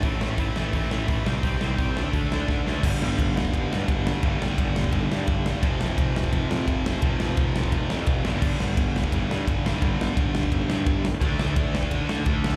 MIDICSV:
0, 0, Header, 1, 4, 480
1, 0, Start_track
1, 0, Tempo, 349650
1, 48, Time_signature, 4, 2, 24, 8
1, 17245, End_track
2, 0, Start_track
2, 0, Title_t, "Distorted electric guitar"
2, 0, Program_c, 0, 30
2, 43, Note_on_c, 0, 45, 86
2, 54, Note_on_c, 0, 52, 79
2, 58, Note_on_c, 0, 57, 100
2, 269, Note_off_c, 0, 45, 0
2, 285, Note_off_c, 0, 52, 0
2, 286, Note_on_c, 0, 45, 79
2, 292, Note_off_c, 0, 57, 0
2, 301, Note_on_c, 0, 52, 81
2, 308, Note_on_c, 0, 57, 81
2, 511, Note_off_c, 0, 45, 0
2, 519, Note_off_c, 0, 52, 0
2, 528, Note_on_c, 0, 45, 79
2, 529, Note_off_c, 0, 57, 0
2, 536, Note_on_c, 0, 52, 89
2, 546, Note_on_c, 0, 57, 83
2, 750, Note_off_c, 0, 45, 0
2, 757, Note_off_c, 0, 52, 0
2, 763, Note_off_c, 0, 57, 0
2, 766, Note_on_c, 0, 45, 73
2, 773, Note_on_c, 0, 52, 84
2, 779, Note_on_c, 0, 57, 94
2, 991, Note_off_c, 0, 45, 0
2, 1001, Note_off_c, 0, 52, 0
2, 1007, Note_off_c, 0, 57, 0
2, 1008, Note_on_c, 0, 45, 101
2, 1018, Note_on_c, 0, 52, 98
2, 1024, Note_on_c, 0, 57, 113
2, 1234, Note_off_c, 0, 45, 0
2, 1243, Note_off_c, 0, 52, 0
2, 1250, Note_on_c, 0, 45, 80
2, 1252, Note_off_c, 0, 57, 0
2, 1260, Note_on_c, 0, 52, 75
2, 1268, Note_on_c, 0, 57, 81
2, 1466, Note_off_c, 0, 45, 0
2, 1480, Note_off_c, 0, 52, 0
2, 1483, Note_on_c, 0, 45, 83
2, 1484, Note_off_c, 0, 57, 0
2, 1497, Note_on_c, 0, 52, 89
2, 1501, Note_on_c, 0, 57, 97
2, 1714, Note_off_c, 0, 45, 0
2, 1721, Note_off_c, 0, 52, 0
2, 1723, Note_off_c, 0, 57, 0
2, 1725, Note_on_c, 0, 48, 91
2, 1736, Note_on_c, 0, 55, 76
2, 1745, Note_on_c, 0, 60, 104
2, 1951, Note_off_c, 0, 48, 0
2, 1957, Note_off_c, 0, 55, 0
2, 1966, Note_off_c, 0, 60, 0
2, 1967, Note_on_c, 0, 48, 99
2, 1974, Note_on_c, 0, 55, 87
2, 1982, Note_on_c, 0, 60, 104
2, 2193, Note_off_c, 0, 48, 0
2, 2201, Note_off_c, 0, 55, 0
2, 2210, Note_on_c, 0, 48, 74
2, 2212, Note_off_c, 0, 60, 0
2, 2217, Note_on_c, 0, 55, 77
2, 2228, Note_on_c, 0, 60, 81
2, 2429, Note_off_c, 0, 48, 0
2, 2437, Note_off_c, 0, 55, 0
2, 2444, Note_off_c, 0, 60, 0
2, 2445, Note_on_c, 0, 48, 84
2, 2454, Note_on_c, 0, 55, 91
2, 2461, Note_on_c, 0, 60, 84
2, 2676, Note_off_c, 0, 48, 0
2, 2680, Note_off_c, 0, 55, 0
2, 2684, Note_off_c, 0, 60, 0
2, 2699, Note_on_c, 0, 50, 96
2, 2704, Note_on_c, 0, 57, 90
2, 2712, Note_on_c, 0, 62, 97
2, 2908, Note_off_c, 0, 50, 0
2, 2920, Note_off_c, 0, 57, 0
2, 2924, Note_on_c, 0, 50, 96
2, 2926, Note_off_c, 0, 62, 0
2, 2937, Note_on_c, 0, 57, 102
2, 2942, Note_on_c, 0, 62, 91
2, 3158, Note_off_c, 0, 50, 0
2, 3169, Note_off_c, 0, 57, 0
2, 3174, Note_on_c, 0, 50, 72
2, 3175, Note_off_c, 0, 62, 0
2, 3186, Note_on_c, 0, 57, 71
2, 3192, Note_on_c, 0, 62, 87
2, 3399, Note_off_c, 0, 50, 0
2, 3408, Note_off_c, 0, 57, 0
2, 3408, Note_off_c, 0, 62, 0
2, 3415, Note_on_c, 0, 50, 84
2, 3424, Note_on_c, 0, 57, 86
2, 3425, Note_on_c, 0, 62, 85
2, 3635, Note_off_c, 0, 50, 0
2, 3643, Note_off_c, 0, 57, 0
2, 3652, Note_on_c, 0, 50, 73
2, 3655, Note_off_c, 0, 62, 0
2, 3660, Note_on_c, 0, 57, 78
2, 3672, Note_on_c, 0, 62, 92
2, 3880, Note_off_c, 0, 50, 0
2, 3881, Note_on_c, 0, 43, 88
2, 3884, Note_off_c, 0, 57, 0
2, 3890, Note_off_c, 0, 62, 0
2, 3904, Note_on_c, 0, 50, 101
2, 3927, Note_on_c, 0, 55, 107
2, 5797, Note_off_c, 0, 43, 0
2, 5808, Note_off_c, 0, 50, 0
2, 5812, Note_on_c, 0, 43, 85
2, 5819, Note_off_c, 0, 55, 0
2, 5839, Note_on_c, 0, 50, 95
2, 5857, Note_on_c, 0, 55, 97
2, 7712, Note_off_c, 0, 43, 0
2, 7718, Note_on_c, 0, 41, 91
2, 7735, Note_off_c, 0, 50, 0
2, 7744, Note_off_c, 0, 55, 0
2, 7747, Note_on_c, 0, 48, 97
2, 7765, Note_on_c, 0, 53, 95
2, 9622, Note_off_c, 0, 41, 0
2, 9638, Note_on_c, 0, 41, 103
2, 9649, Note_off_c, 0, 48, 0
2, 9658, Note_off_c, 0, 53, 0
2, 9665, Note_on_c, 0, 48, 92
2, 9686, Note_on_c, 0, 53, 100
2, 11310, Note_off_c, 0, 41, 0
2, 11315, Note_on_c, 0, 43, 89
2, 11327, Note_off_c, 0, 48, 0
2, 11337, Note_off_c, 0, 53, 0
2, 11342, Note_on_c, 0, 50, 96
2, 11373, Note_on_c, 0, 55, 99
2, 13225, Note_off_c, 0, 43, 0
2, 13242, Note_on_c, 0, 43, 82
2, 13244, Note_off_c, 0, 50, 0
2, 13259, Note_off_c, 0, 55, 0
2, 13267, Note_on_c, 0, 50, 101
2, 13294, Note_on_c, 0, 55, 88
2, 15152, Note_off_c, 0, 43, 0
2, 15164, Note_off_c, 0, 50, 0
2, 15178, Note_off_c, 0, 55, 0
2, 15383, Note_on_c, 0, 50, 86
2, 15407, Note_on_c, 0, 57, 110
2, 15432, Note_on_c, 0, 62, 105
2, 17245, Note_off_c, 0, 50, 0
2, 17245, Note_off_c, 0, 57, 0
2, 17245, Note_off_c, 0, 62, 0
2, 17245, End_track
3, 0, Start_track
3, 0, Title_t, "Picked electric bass"
3, 0, Program_c, 1, 34
3, 44, Note_on_c, 1, 33, 88
3, 192, Note_off_c, 1, 33, 0
3, 303, Note_on_c, 1, 33, 96
3, 446, Note_off_c, 1, 33, 0
3, 522, Note_on_c, 1, 33, 91
3, 671, Note_off_c, 1, 33, 0
3, 778, Note_on_c, 1, 33, 90
3, 922, Note_off_c, 1, 33, 0
3, 1010, Note_on_c, 1, 33, 99
3, 1157, Note_off_c, 1, 33, 0
3, 1262, Note_on_c, 1, 33, 86
3, 1406, Note_off_c, 1, 33, 0
3, 1490, Note_on_c, 1, 33, 84
3, 1637, Note_off_c, 1, 33, 0
3, 1732, Note_on_c, 1, 36, 87
3, 1879, Note_off_c, 1, 36, 0
3, 1969, Note_on_c, 1, 36, 104
3, 2117, Note_off_c, 1, 36, 0
3, 2229, Note_on_c, 1, 36, 80
3, 2371, Note_off_c, 1, 36, 0
3, 2453, Note_on_c, 1, 36, 85
3, 2600, Note_off_c, 1, 36, 0
3, 2711, Note_on_c, 1, 38, 84
3, 2853, Note_off_c, 1, 38, 0
3, 2928, Note_on_c, 1, 38, 93
3, 3077, Note_off_c, 1, 38, 0
3, 3173, Note_on_c, 1, 38, 86
3, 3320, Note_off_c, 1, 38, 0
3, 3413, Note_on_c, 1, 38, 83
3, 3561, Note_off_c, 1, 38, 0
3, 3663, Note_on_c, 1, 38, 86
3, 3808, Note_off_c, 1, 38, 0
3, 3889, Note_on_c, 1, 31, 91
3, 4071, Note_off_c, 1, 31, 0
3, 4131, Note_on_c, 1, 31, 98
3, 4313, Note_off_c, 1, 31, 0
3, 4380, Note_on_c, 1, 31, 94
3, 4738, Note_off_c, 1, 31, 0
3, 4858, Note_on_c, 1, 31, 98
3, 5038, Note_off_c, 1, 31, 0
3, 5090, Note_on_c, 1, 43, 84
3, 5272, Note_off_c, 1, 43, 0
3, 5336, Note_on_c, 1, 31, 99
3, 5695, Note_off_c, 1, 31, 0
3, 5808, Note_on_c, 1, 31, 96
3, 5991, Note_off_c, 1, 31, 0
3, 6040, Note_on_c, 1, 31, 103
3, 6226, Note_off_c, 1, 31, 0
3, 6292, Note_on_c, 1, 31, 87
3, 6653, Note_off_c, 1, 31, 0
3, 6767, Note_on_c, 1, 31, 101
3, 6950, Note_off_c, 1, 31, 0
3, 7011, Note_on_c, 1, 43, 87
3, 7193, Note_off_c, 1, 43, 0
3, 7246, Note_on_c, 1, 31, 92
3, 7609, Note_off_c, 1, 31, 0
3, 7724, Note_on_c, 1, 29, 103
3, 7909, Note_off_c, 1, 29, 0
3, 7981, Note_on_c, 1, 29, 104
3, 8159, Note_off_c, 1, 29, 0
3, 8211, Note_on_c, 1, 29, 98
3, 8572, Note_off_c, 1, 29, 0
3, 8689, Note_on_c, 1, 29, 99
3, 8872, Note_off_c, 1, 29, 0
3, 8937, Note_on_c, 1, 41, 100
3, 9117, Note_off_c, 1, 41, 0
3, 9160, Note_on_c, 1, 29, 95
3, 9525, Note_off_c, 1, 29, 0
3, 9645, Note_on_c, 1, 29, 101
3, 9830, Note_off_c, 1, 29, 0
3, 9883, Note_on_c, 1, 29, 100
3, 10068, Note_off_c, 1, 29, 0
3, 10124, Note_on_c, 1, 29, 88
3, 10487, Note_off_c, 1, 29, 0
3, 10600, Note_on_c, 1, 29, 105
3, 10786, Note_off_c, 1, 29, 0
3, 10861, Note_on_c, 1, 41, 91
3, 11039, Note_off_c, 1, 41, 0
3, 11082, Note_on_c, 1, 29, 87
3, 11267, Note_off_c, 1, 29, 0
3, 11352, Note_on_c, 1, 31, 97
3, 11526, Note_off_c, 1, 31, 0
3, 11559, Note_on_c, 1, 31, 101
3, 11745, Note_off_c, 1, 31, 0
3, 11818, Note_on_c, 1, 31, 106
3, 11997, Note_off_c, 1, 31, 0
3, 12041, Note_on_c, 1, 31, 87
3, 12405, Note_off_c, 1, 31, 0
3, 12528, Note_on_c, 1, 31, 93
3, 12710, Note_off_c, 1, 31, 0
3, 12777, Note_on_c, 1, 43, 92
3, 12956, Note_off_c, 1, 43, 0
3, 13006, Note_on_c, 1, 31, 96
3, 13368, Note_off_c, 1, 31, 0
3, 13481, Note_on_c, 1, 31, 105
3, 13665, Note_off_c, 1, 31, 0
3, 13732, Note_on_c, 1, 31, 96
3, 13912, Note_off_c, 1, 31, 0
3, 13967, Note_on_c, 1, 31, 103
3, 14328, Note_off_c, 1, 31, 0
3, 14442, Note_on_c, 1, 31, 95
3, 14625, Note_off_c, 1, 31, 0
3, 14684, Note_on_c, 1, 43, 92
3, 14867, Note_off_c, 1, 43, 0
3, 14913, Note_on_c, 1, 31, 96
3, 15278, Note_off_c, 1, 31, 0
3, 15393, Note_on_c, 1, 38, 96
3, 15579, Note_off_c, 1, 38, 0
3, 15640, Note_on_c, 1, 38, 94
3, 15824, Note_off_c, 1, 38, 0
3, 15879, Note_on_c, 1, 38, 95
3, 16241, Note_off_c, 1, 38, 0
3, 16359, Note_on_c, 1, 38, 105
3, 16542, Note_off_c, 1, 38, 0
3, 16600, Note_on_c, 1, 50, 92
3, 16783, Note_off_c, 1, 50, 0
3, 16834, Note_on_c, 1, 38, 98
3, 17197, Note_off_c, 1, 38, 0
3, 17245, End_track
4, 0, Start_track
4, 0, Title_t, "Drums"
4, 32, Note_on_c, 9, 46, 59
4, 42, Note_on_c, 9, 36, 114
4, 169, Note_off_c, 9, 46, 0
4, 179, Note_off_c, 9, 36, 0
4, 290, Note_on_c, 9, 38, 107
4, 427, Note_off_c, 9, 38, 0
4, 519, Note_on_c, 9, 46, 58
4, 524, Note_on_c, 9, 36, 106
4, 656, Note_off_c, 9, 46, 0
4, 661, Note_off_c, 9, 36, 0
4, 767, Note_on_c, 9, 38, 106
4, 905, Note_off_c, 9, 38, 0
4, 1004, Note_on_c, 9, 46, 52
4, 1007, Note_on_c, 9, 36, 96
4, 1141, Note_off_c, 9, 46, 0
4, 1144, Note_off_c, 9, 36, 0
4, 1254, Note_on_c, 9, 38, 101
4, 1391, Note_off_c, 9, 38, 0
4, 1483, Note_on_c, 9, 46, 57
4, 1488, Note_on_c, 9, 36, 112
4, 1620, Note_off_c, 9, 46, 0
4, 1625, Note_off_c, 9, 36, 0
4, 1735, Note_on_c, 9, 38, 120
4, 1873, Note_off_c, 9, 38, 0
4, 1966, Note_on_c, 9, 46, 56
4, 1967, Note_on_c, 9, 36, 108
4, 2103, Note_off_c, 9, 46, 0
4, 2104, Note_off_c, 9, 36, 0
4, 2210, Note_on_c, 9, 38, 104
4, 2347, Note_off_c, 9, 38, 0
4, 2449, Note_on_c, 9, 36, 114
4, 2450, Note_on_c, 9, 46, 50
4, 2587, Note_off_c, 9, 36, 0
4, 2588, Note_off_c, 9, 46, 0
4, 2702, Note_on_c, 9, 38, 94
4, 2839, Note_off_c, 9, 38, 0
4, 2930, Note_on_c, 9, 36, 97
4, 2931, Note_on_c, 9, 46, 54
4, 3067, Note_off_c, 9, 36, 0
4, 3068, Note_off_c, 9, 46, 0
4, 3184, Note_on_c, 9, 38, 112
4, 3321, Note_off_c, 9, 38, 0
4, 3411, Note_on_c, 9, 36, 95
4, 3421, Note_on_c, 9, 38, 56
4, 3548, Note_off_c, 9, 36, 0
4, 3558, Note_off_c, 9, 38, 0
4, 3665, Note_on_c, 9, 38, 87
4, 3802, Note_off_c, 9, 38, 0
4, 3891, Note_on_c, 9, 36, 108
4, 3894, Note_on_c, 9, 49, 127
4, 4028, Note_off_c, 9, 36, 0
4, 4032, Note_off_c, 9, 49, 0
4, 4147, Note_on_c, 9, 38, 114
4, 4285, Note_off_c, 9, 38, 0
4, 4375, Note_on_c, 9, 36, 119
4, 4382, Note_on_c, 9, 51, 88
4, 4512, Note_off_c, 9, 36, 0
4, 4520, Note_off_c, 9, 51, 0
4, 4631, Note_on_c, 9, 38, 119
4, 4734, Note_on_c, 9, 36, 82
4, 4768, Note_off_c, 9, 38, 0
4, 4854, Note_off_c, 9, 36, 0
4, 4854, Note_on_c, 9, 36, 105
4, 4861, Note_on_c, 9, 51, 71
4, 4991, Note_off_c, 9, 36, 0
4, 4999, Note_off_c, 9, 51, 0
4, 5117, Note_on_c, 9, 38, 116
4, 5254, Note_off_c, 9, 38, 0
4, 5332, Note_on_c, 9, 36, 118
4, 5333, Note_on_c, 9, 51, 84
4, 5469, Note_off_c, 9, 36, 0
4, 5470, Note_off_c, 9, 51, 0
4, 5584, Note_on_c, 9, 38, 125
4, 5722, Note_off_c, 9, 38, 0
4, 5804, Note_on_c, 9, 51, 83
4, 5808, Note_on_c, 9, 36, 124
4, 5941, Note_off_c, 9, 51, 0
4, 5945, Note_off_c, 9, 36, 0
4, 6067, Note_on_c, 9, 38, 115
4, 6204, Note_off_c, 9, 38, 0
4, 6289, Note_on_c, 9, 36, 112
4, 6291, Note_on_c, 9, 51, 88
4, 6427, Note_off_c, 9, 36, 0
4, 6428, Note_off_c, 9, 51, 0
4, 6536, Note_on_c, 9, 38, 113
4, 6646, Note_on_c, 9, 36, 87
4, 6673, Note_off_c, 9, 38, 0
4, 6758, Note_on_c, 9, 51, 71
4, 6765, Note_off_c, 9, 36, 0
4, 6765, Note_on_c, 9, 36, 92
4, 6895, Note_off_c, 9, 51, 0
4, 6903, Note_off_c, 9, 36, 0
4, 7023, Note_on_c, 9, 38, 104
4, 7160, Note_off_c, 9, 38, 0
4, 7239, Note_on_c, 9, 51, 87
4, 7246, Note_on_c, 9, 36, 115
4, 7377, Note_off_c, 9, 51, 0
4, 7383, Note_off_c, 9, 36, 0
4, 7494, Note_on_c, 9, 38, 117
4, 7631, Note_off_c, 9, 38, 0
4, 7726, Note_on_c, 9, 36, 122
4, 7727, Note_on_c, 9, 51, 95
4, 7864, Note_off_c, 9, 36, 0
4, 7865, Note_off_c, 9, 51, 0
4, 7972, Note_on_c, 9, 38, 109
4, 8109, Note_off_c, 9, 38, 0
4, 8208, Note_on_c, 9, 36, 126
4, 8214, Note_on_c, 9, 51, 89
4, 8345, Note_off_c, 9, 36, 0
4, 8351, Note_off_c, 9, 51, 0
4, 8462, Note_on_c, 9, 38, 116
4, 8566, Note_on_c, 9, 36, 97
4, 8599, Note_off_c, 9, 38, 0
4, 8684, Note_on_c, 9, 51, 79
4, 8685, Note_off_c, 9, 36, 0
4, 8685, Note_on_c, 9, 36, 101
4, 8821, Note_off_c, 9, 51, 0
4, 8823, Note_off_c, 9, 36, 0
4, 8935, Note_on_c, 9, 38, 109
4, 9072, Note_off_c, 9, 38, 0
4, 9165, Note_on_c, 9, 36, 109
4, 9167, Note_on_c, 9, 51, 79
4, 9303, Note_off_c, 9, 36, 0
4, 9305, Note_off_c, 9, 51, 0
4, 9420, Note_on_c, 9, 38, 127
4, 9558, Note_off_c, 9, 38, 0
4, 9635, Note_on_c, 9, 51, 86
4, 9645, Note_on_c, 9, 36, 119
4, 9772, Note_off_c, 9, 51, 0
4, 9782, Note_off_c, 9, 36, 0
4, 9883, Note_on_c, 9, 38, 114
4, 10021, Note_off_c, 9, 38, 0
4, 10117, Note_on_c, 9, 51, 78
4, 10124, Note_on_c, 9, 36, 127
4, 10254, Note_off_c, 9, 51, 0
4, 10261, Note_off_c, 9, 36, 0
4, 10374, Note_on_c, 9, 38, 107
4, 10481, Note_on_c, 9, 36, 86
4, 10511, Note_off_c, 9, 38, 0
4, 10598, Note_on_c, 9, 51, 78
4, 10602, Note_off_c, 9, 36, 0
4, 10602, Note_on_c, 9, 36, 93
4, 10736, Note_off_c, 9, 51, 0
4, 10739, Note_off_c, 9, 36, 0
4, 10846, Note_on_c, 9, 38, 109
4, 10984, Note_off_c, 9, 38, 0
4, 11071, Note_on_c, 9, 51, 82
4, 11081, Note_on_c, 9, 36, 124
4, 11208, Note_off_c, 9, 51, 0
4, 11219, Note_off_c, 9, 36, 0
4, 11323, Note_on_c, 9, 38, 113
4, 11460, Note_off_c, 9, 38, 0
4, 11559, Note_on_c, 9, 49, 113
4, 11560, Note_on_c, 9, 36, 116
4, 11696, Note_off_c, 9, 49, 0
4, 11697, Note_off_c, 9, 36, 0
4, 11810, Note_on_c, 9, 38, 104
4, 11948, Note_off_c, 9, 38, 0
4, 12043, Note_on_c, 9, 36, 127
4, 12044, Note_on_c, 9, 51, 88
4, 12181, Note_off_c, 9, 36, 0
4, 12181, Note_off_c, 9, 51, 0
4, 12301, Note_on_c, 9, 38, 96
4, 12405, Note_on_c, 9, 36, 98
4, 12438, Note_off_c, 9, 38, 0
4, 12525, Note_off_c, 9, 36, 0
4, 12525, Note_on_c, 9, 36, 106
4, 12532, Note_on_c, 9, 51, 78
4, 12662, Note_off_c, 9, 36, 0
4, 12669, Note_off_c, 9, 51, 0
4, 12784, Note_on_c, 9, 38, 107
4, 12921, Note_off_c, 9, 38, 0
4, 13007, Note_on_c, 9, 36, 110
4, 13013, Note_on_c, 9, 51, 87
4, 13145, Note_off_c, 9, 36, 0
4, 13150, Note_off_c, 9, 51, 0
4, 13263, Note_on_c, 9, 38, 120
4, 13400, Note_off_c, 9, 38, 0
4, 13481, Note_on_c, 9, 51, 84
4, 13482, Note_on_c, 9, 36, 120
4, 13618, Note_off_c, 9, 51, 0
4, 13619, Note_off_c, 9, 36, 0
4, 13744, Note_on_c, 9, 38, 117
4, 13882, Note_off_c, 9, 38, 0
4, 13962, Note_on_c, 9, 36, 126
4, 13965, Note_on_c, 9, 51, 88
4, 14099, Note_off_c, 9, 36, 0
4, 14102, Note_off_c, 9, 51, 0
4, 14205, Note_on_c, 9, 38, 114
4, 14319, Note_on_c, 9, 36, 93
4, 14342, Note_off_c, 9, 38, 0
4, 14440, Note_off_c, 9, 36, 0
4, 14440, Note_on_c, 9, 36, 106
4, 14444, Note_on_c, 9, 51, 74
4, 14577, Note_off_c, 9, 36, 0
4, 14581, Note_off_c, 9, 51, 0
4, 14684, Note_on_c, 9, 38, 112
4, 14822, Note_off_c, 9, 38, 0
4, 14914, Note_on_c, 9, 51, 75
4, 14916, Note_on_c, 9, 36, 127
4, 15052, Note_off_c, 9, 51, 0
4, 15053, Note_off_c, 9, 36, 0
4, 15167, Note_on_c, 9, 38, 121
4, 15305, Note_off_c, 9, 38, 0
4, 15395, Note_on_c, 9, 36, 113
4, 15401, Note_on_c, 9, 51, 97
4, 15533, Note_off_c, 9, 36, 0
4, 15538, Note_off_c, 9, 51, 0
4, 15643, Note_on_c, 9, 38, 108
4, 15780, Note_off_c, 9, 38, 0
4, 15874, Note_on_c, 9, 36, 127
4, 15875, Note_on_c, 9, 51, 87
4, 16012, Note_off_c, 9, 36, 0
4, 16012, Note_off_c, 9, 51, 0
4, 16126, Note_on_c, 9, 38, 115
4, 16236, Note_on_c, 9, 36, 95
4, 16263, Note_off_c, 9, 38, 0
4, 16350, Note_on_c, 9, 51, 92
4, 16354, Note_off_c, 9, 36, 0
4, 16354, Note_on_c, 9, 36, 96
4, 16488, Note_off_c, 9, 51, 0
4, 16491, Note_off_c, 9, 36, 0
4, 16601, Note_on_c, 9, 38, 114
4, 16739, Note_off_c, 9, 38, 0
4, 16826, Note_on_c, 9, 51, 87
4, 16834, Note_on_c, 9, 36, 117
4, 16963, Note_off_c, 9, 51, 0
4, 16972, Note_off_c, 9, 36, 0
4, 17083, Note_on_c, 9, 38, 127
4, 17220, Note_off_c, 9, 38, 0
4, 17245, End_track
0, 0, End_of_file